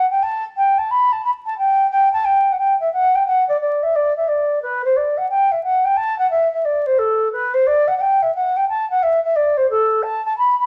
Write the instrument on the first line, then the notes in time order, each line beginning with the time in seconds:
flute
0.10 G5
0.23 A5
0.57 G5
0.78 A5
0.91 B5
1.12 A5
1.25 B5
1.46 A5
1.58 G5
1.91 G5
2.13 A5
2.25 G5
2.52 F#5
2.59 G5
2.80 E5
2.93 F#5
3.15 G5
3.27 F#5
3.49 D5
3.61 D5
3.83 E5
3.96 D5
4.17 E5
4.28 D5
4.63 B4
4.85 C5
4.97 D5
5.18 F#5
5.30 G5
5.52 E5
5.64 F#5
5.85 G5
5.97 A5
6.19 F#5
6.31 E5
6.53 E5
6.65 D5
6.87 C5
6.99 A4
7.32 B4
7.54 C5
7.67 D5
7.88 F#5
7.97 F#5 G5
8.23 E5
8.35 F#5
8.57 G5
8.69 A5
8.90 F#5
9.03 E5
9.24 E5
9.36 D5
9.57 C5
9.70 A4
10.03 A5
10.26 A5
10.38 B5
10.59 B5